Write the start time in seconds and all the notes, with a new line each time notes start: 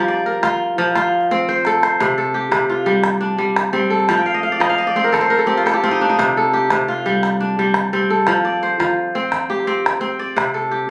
Already playing: F3 C4 D#4 G4
0.08 D5, calabash click
0.17 calabash click
0.26 A#4
0.43 F4, calabash thump, calabash click
0.78 F3
0.88 calabash click
0.96 F4, calabash thump, calabash click
1.21 calabash click
1.31 C4, calabash thump
1.48 C5, calabash thump
1.65 A4, calabash click
1.83 C5, calabash click
2.00 C3, calabash thump, calabash click
2.18 A4
2.34 G4
2.51 C3, calabash thump, calabash click
2.69 F4
2.86 G3, calabash click
3.04 calabash thump, calabash click
3.21 D4
3.38 G3
3.56 calabash thump, calabash click
3.73 G3 C4
3.90 A4
4.00 calabash click
4.09 F3, calabash thump, calabash click
4.17 G5
4.26 F5
4.34 D#5
4.43 F5
4.52 D5
4.60 F3 D#5, calabash thump, calabash click
4.69 F5
4.78 D#5
4.87 D5
4.96 C4 C5, calabash click
5.04 A#4
5.12 A4, calabash thump, calabash click
5.21 C5
5.30 A#4
5.39 A4
5.46 C4 G4
5.57 F4
5.66 A4, calabash thump, calabash click
5.74 G4
5.83 C4 F4
5.91 D#4
6.01 D4
6.10 D#4, calabash click
6.19 C3, calabash thump, calabash click
6.37 A4
6.53 G4
6.70 C3, calabash thump, calabash click
6.88 F4
7.06 G3
7.23 calabash thump, calabash click
7.41 D4
7.59 G3
7.74 calabash thump, calabash click
7.93 G3 C4
8.10 A4
8.18 calabash click
8.27 F3, calabash thump, calabash click
8.45 D5
8.62 C5, calabash click
8.80 F3, calabash thump, calabash click
8.88 calabash click
9.15 C4
9.32 calabash thump, calabash click
9.41 calabash click
9.50 G4, calabash click
9.60 calabash click
9.67 C4
9.86 calabash thump, calabash click
10.01 C4, calabash click
10.19 D5
10.36 C3, calabash thump, calabash click
10.54 A4
10.71 G4